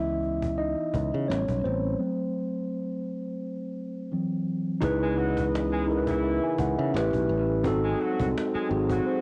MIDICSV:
0, 0, Header, 1, 7, 480
1, 0, Start_track
1, 0, Key_signature, 4, "minor"
1, 0, Tempo, 705882
1, 1357, Time_signature, 4, 2, 24, 8
1, 6264, End_track
2, 0, Start_track
2, 0, Title_t, "Tine electric piano"
2, 0, Program_c, 0, 4
2, 0, Control_c, 0, 64, 127
2, 0, Note_on_c, 0, 52, 51
2, 0, Note_on_c, 0, 59, 49
2, 0, Note_on_c, 0, 64, 70
2, 0, Note_on_c, 0, 75, 57
2, 0, Note_on_c, 0, 76, 87
2, 130, Note_off_c, 0, 52, 0
2, 132, Note_off_c, 0, 59, 0
2, 134, Note_off_c, 0, 75, 0
2, 369, Note_off_c, 0, 76, 0
2, 373, Note_off_c, 0, 64, 0
2, 395, Note_on_c, 0, 75, 93
2, 406, Note_on_c, 0, 63, 70
2, 854, Note_off_c, 0, 63, 0
2, 873, Note_on_c, 0, 73, 80
2, 876, Note_on_c, 0, 55, 53
2, 881, Note_on_c, 0, 59, 48
2, 883, Note_on_c, 0, 61, 64
2, 884, Control_c, 0, 64, 0
2, 890, Note_off_c, 0, 75, 0
2, 1015, Control_c, 0, 64, 127
2, 1098, Note_off_c, 0, 73, 0
2, 1105, Note_off_c, 0, 61, 0
2, 1117, Note_on_c, 0, 72, 74
2, 1129, Note_on_c, 0, 60, 56
2, 1205, Note_off_c, 0, 55, 0
2, 1208, Note_off_c, 0, 59, 0
2, 1353, Note_off_c, 0, 60, 0
2, 1353, Note_on_c, 0, 54, 55
2, 1356, Note_on_c, 0, 57, 48
2, 1361, Note_on_c, 0, 60, 57
2, 1365, Control_c, 0, 64, 0
2, 1472, Control_c, 0, 64, 127
2, 2049, Note_off_c, 0, 72, 0
2, 2768, Note_off_c, 0, 54, 0
2, 2769, Note_off_c, 0, 57, 0
2, 2772, Note_off_c, 0, 60, 0
2, 2800, Note_on_c, 0, 52, 52
2, 2802, Note_on_c, 0, 54, 50
2, 2805, Control_c, 0, 64, 0
2, 2809, Note_on_c, 0, 60, 59
2, 2926, Control_c, 0, 64, 127
2, 3254, Note_off_c, 0, 52, 0
2, 3256, Note_off_c, 0, 54, 0
2, 3259, Note_off_c, 0, 60, 0
2, 3269, Note_on_c, 0, 63, 114
2, 3276, Note_on_c, 0, 64, 100
2, 3286, Control_c, 0, 64, 0
2, 3286, Note_on_c, 0, 68, 97
2, 3293, Note_on_c, 0, 71, 127
2, 3405, Control_c, 0, 64, 127
2, 3903, Note_off_c, 0, 63, 0
2, 3907, Note_off_c, 0, 64, 0
2, 3912, Note_off_c, 0, 68, 0
2, 3915, Note_off_c, 0, 71, 0
2, 3991, Note_on_c, 0, 63, 80
2, 3999, Note_on_c, 0, 64, 74
2, 4006, Note_on_c, 0, 68, 78
2, 4016, Note_on_c, 0, 70, 74
2, 4055, Note_off_c, 0, 70, 0
2, 4061, Note_on_c, 0, 71, 90
2, 4241, Note_on_c, 0, 76, 65
2, 4365, Note_off_c, 0, 76, 0
2, 4376, Note_on_c, 0, 80, 69
2, 4414, Note_off_c, 0, 63, 0
2, 4418, Note_off_c, 0, 64, 0
2, 4421, Note_off_c, 0, 68, 0
2, 4449, Note_off_c, 0, 71, 0
2, 4475, Note_off_c, 0, 80, 0
2, 4485, Note_on_c, 0, 78, 70
2, 4607, Note_off_c, 0, 78, 0
2, 4612, Note_on_c, 0, 76, 65
2, 4710, Note_on_c, 0, 61, 91
2, 4719, Note_on_c, 0, 64, 87
2, 4724, Control_c, 0, 64, 0
2, 4727, Note_on_c, 0, 67, 85
2, 4735, Note_on_c, 0, 71, 108
2, 4839, Note_off_c, 0, 76, 0
2, 4849, Control_c, 0, 64, 127
2, 5133, Note_off_c, 0, 61, 0
2, 5138, Note_off_c, 0, 64, 0
2, 5142, Note_off_c, 0, 67, 0
2, 5146, Note_off_c, 0, 71, 0
2, 5190, Note_on_c, 0, 60, 111
2, 5198, Note_on_c, 0, 63, 106
2, 5206, Control_c, 0, 64, 0
2, 5206, Note_on_c, 0, 66, 103
2, 5214, Note_on_c, 0, 69, 124
2, 5328, Control_c, 0, 64, 127
2, 5824, Note_off_c, 0, 60, 0
2, 5828, Note_off_c, 0, 63, 0
2, 5832, Note_off_c, 0, 66, 0
2, 5836, Note_off_c, 0, 69, 0
2, 5909, Note_on_c, 0, 60, 85
2, 5916, Note_on_c, 0, 63, 76
2, 5925, Note_on_c, 0, 66, 74
2, 5933, Note_on_c, 0, 68, 91
2, 6162, Note_on_c, 0, 72, 67
2, 6264, Note_off_c, 0, 60, 0
2, 6264, Note_off_c, 0, 63, 0
2, 6264, Note_off_c, 0, 66, 0
2, 6264, Note_off_c, 0, 68, 0
2, 6264, Note_off_c, 0, 72, 0
2, 6264, End_track
3, 0, Start_track
3, 0, Title_t, "Horn section"
3, 0, Program_c, 1, 61
3, 3410, Note_on_c, 1, 56, 69
3, 3410, Note_on_c, 1, 68, 73
3, 3495, Note_off_c, 1, 68, 0
3, 3496, Note_off_c, 1, 56, 0
3, 3514, Note_on_c, 1, 54, 64
3, 3515, Note_on_c, 1, 66, 70
3, 3707, Note_off_c, 1, 54, 0
3, 3707, Note_off_c, 1, 66, 0
3, 3886, Note_on_c, 1, 56, 70
3, 3886, Note_on_c, 1, 68, 77
3, 3973, Note_off_c, 1, 56, 0
3, 3973, Note_off_c, 1, 68, 0
3, 4128, Note_on_c, 1, 64, 68
3, 4129, Note_on_c, 1, 52, 61
3, 4455, Note_off_c, 1, 52, 0
3, 4455, Note_off_c, 1, 64, 0
3, 5328, Note_on_c, 1, 56, 65
3, 5328, Note_on_c, 1, 68, 71
3, 5414, Note_off_c, 1, 56, 0
3, 5414, Note_off_c, 1, 68, 0
3, 5433, Note_on_c, 1, 54, 70
3, 5433, Note_on_c, 1, 66, 80
3, 5627, Note_off_c, 1, 54, 0
3, 5627, Note_off_c, 1, 66, 0
3, 5807, Note_on_c, 1, 56, 72
3, 5807, Note_on_c, 1, 68, 81
3, 5893, Note_off_c, 1, 56, 0
3, 5893, Note_off_c, 1, 68, 0
3, 6047, Note_on_c, 1, 54, 66
3, 6047, Note_on_c, 1, 66, 67
3, 6264, Note_off_c, 1, 54, 0
3, 6264, Note_off_c, 1, 66, 0
3, 6264, End_track
4, 0, Start_track
4, 0, Title_t, "Analog synth pad"
4, 0, Program_c, 2, 89
4, 3272, Note_on_c, 2, 52, 90
4, 3273, Note_on_c, 2, 49, 81
4, 3274, Note_on_c, 2, 59, 75
4, 3274, Note_on_c, 2, 75, 75
4, 4700, Note_off_c, 2, 49, 0
4, 4700, Note_off_c, 2, 52, 0
4, 4701, Note_off_c, 2, 59, 0
4, 4701, Note_off_c, 2, 75, 0
4, 4714, Note_on_c, 2, 57, 69
4, 4714, Note_on_c, 2, 61, 85
4, 4715, Note_on_c, 2, 55, 73
4, 5190, Note_off_c, 2, 61, 0
4, 5191, Note_off_c, 2, 55, 0
4, 5191, Note_off_c, 2, 57, 0
4, 5197, Note_on_c, 2, 60, 85
4, 5198, Note_on_c, 2, 54, 77
4, 5198, Note_on_c, 2, 56, 72
4, 6264, Note_off_c, 2, 54, 0
4, 6264, Note_off_c, 2, 56, 0
4, 6264, Note_off_c, 2, 60, 0
4, 6264, End_track
5, 0, Start_track
5, 0, Title_t, "Fingered electric bass"
5, 0, Program_c, 3, 33
5, 0, Note_on_c, 3, 37, 91
5, 504, Note_off_c, 3, 37, 0
5, 643, Note_on_c, 3, 37, 83
5, 750, Note_off_c, 3, 37, 0
5, 777, Note_on_c, 3, 49, 92
5, 862, Note_off_c, 3, 49, 0
5, 884, Note_on_c, 3, 33, 95
5, 991, Note_off_c, 3, 33, 0
5, 1013, Note_on_c, 3, 35, 78
5, 1099, Note_off_c, 3, 35, 0
5, 1125, Note_on_c, 3, 33, 77
5, 1319, Note_off_c, 3, 33, 0
5, 3279, Note_on_c, 3, 37, 100
5, 4344, Note_off_c, 3, 37, 0
5, 4481, Note_on_c, 3, 37, 84
5, 4589, Note_off_c, 3, 37, 0
5, 4614, Note_on_c, 3, 49, 96
5, 4700, Note_off_c, 3, 49, 0
5, 4719, Note_on_c, 3, 33, 112
5, 4828, Note_off_c, 3, 33, 0
5, 4852, Note_on_c, 3, 35, 84
5, 4939, Note_off_c, 3, 35, 0
5, 4959, Note_on_c, 3, 33, 92
5, 5200, Note_off_c, 3, 33, 0
5, 5200, Note_on_c, 3, 32, 106
5, 5396, Note_off_c, 3, 32, 0
5, 5576, Note_on_c, 3, 36, 87
5, 5661, Note_off_c, 3, 36, 0
5, 5920, Note_on_c, 3, 32, 99
5, 6116, Note_off_c, 3, 32, 0
5, 6264, End_track
6, 0, Start_track
6, 0, Title_t, "Cajon"
6, 46, Note_on_c, 9, 38, 18
6, 114, Note_off_c, 9, 38, 0
6, 157, Note_on_c, 9, 38, 38
6, 179, Note_off_c, 9, 38, 0
6, 179, Note_on_c, 9, 38, 36
6, 247, Note_off_c, 9, 38, 0
6, 289, Note_on_c, 9, 36, 86
6, 357, Note_off_c, 9, 36, 0
6, 537, Note_on_c, 9, 38, 18
6, 605, Note_off_c, 9, 38, 0
6, 638, Note_on_c, 9, 36, 82
6, 706, Note_off_c, 9, 36, 0
6, 771, Note_on_c, 9, 38, 20
6, 839, Note_off_c, 9, 38, 0
6, 895, Note_on_c, 9, 38, 99
6, 963, Note_off_c, 9, 38, 0
6, 1009, Note_on_c, 9, 36, 78
6, 1077, Note_off_c, 9, 36, 0
6, 1125, Note_on_c, 9, 38, 33
6, 1193, Note_off_c, 9, 38, 0
6, 1255, Note_on_c, 9, 38, 22
6, 1323, Note_off_c, 9, 38, 0
6, 3276, Note_on_c, 9, 36, 105
6, 3344, Note_off_c, 9, 36, 0
6, 3413, Note_on_c, 9, 38, 20
6, 3481, Note_off_c, 9, 38, 0
6, 3522, Note_on_c, 9, 38, 42
6, 3590, Note_off_c, 9, 38, 0
6, 3651, Note_on_c, 9, 36, 98
6, 3719, Note_off_c, 9, 36, 0
6, 3775, Note_on_c, 9, 38, 107
6, 3843, Note_off_c, 9, 38, 0
6, 3883, Note_on_c, 9, 38, 20
6, 3951, Note_off_c, 9, 38, 0
6, 3993, Note_on_c, 9, 38, 40
6, 4015, Note_off_c, 9, 38, 0
6, 4015, Note_on_c, 9, 38, 38
6, 4083, Note_off_c, 9, 38, 0
6, 4127, Note_on_c, 9, 36, 95
6, 4195, Note_off_c, 9, 36, 0
6, 4231, Note_on_c, 9, 38, 41
6, 4299, Note_off_c, 9, 38, 0
6, 4376, Note_on_c, 9, 38, 20
6, 4444, Note_off_c, 9, 38, 0
6, 4476, Note_on_c, 9, 36, 92
6, 4544, Note_off_c, 9, 36, 0
6, 4736, Note_on_c, 9, 38, 109
6, 4804, Note_off_c, 9, 38, 0
6, 4849, Note_on_c, 9, 36, 83
6, 4917, Note_off_c, 9, 36, 0
6, 4967, Note_on_c, 9, 38, 35
6, 5035, Note_off_c, 9, 38, 0
6, 5096, Note_on_c, 9, 38, 25
6, 5164, Note_off_c, 9, 38, 0
6, 5196, Note_on_c, 9, 36, 110
6, 5264, Note_off_c, 9, 36, 0
6, 5444, Note_on_c, 9, 38, 44
6, 5512, Note_off_c, 9, 38, 0
6, 5572, Note_on_c, 9, 36, 102
6, 5640, Note_off_c, 9, 36, 0
6, 5695, Note_on_c, 9, 38, 107
6, 5763, Note_off_c, 9, 38, 0
6, 5805, Note_on_c, 9, 38, 20
6, 5873, Note_off_c, 9, 38, 0
6, 5914, Note_on_c, 9, 38, 42
6, 5936, Note_off_c, 9, 38, 0
6, 5936, Note_on_c, 9, 38, 40
6, 6004, Note_off_c, 9, 38, 0
6, 6049, Note_on_c, 9, 36, 99
6, 6117, Note_off_c, 9, 36, 0
6, 6153, Note_on_c, 9, 38, 40
6, 6221, Note_off_c, 9, 38, 0
6, 6264, End_track
7, 0, Start_track
7, 0, Title_t, "Muted fingered electric bass strokes"
7, 5814, Note_on_c, 9, 29, 44
7, 5882, Note_off_c, 9, 29, 0
7, 6264, End_track
0, 0, End_of_file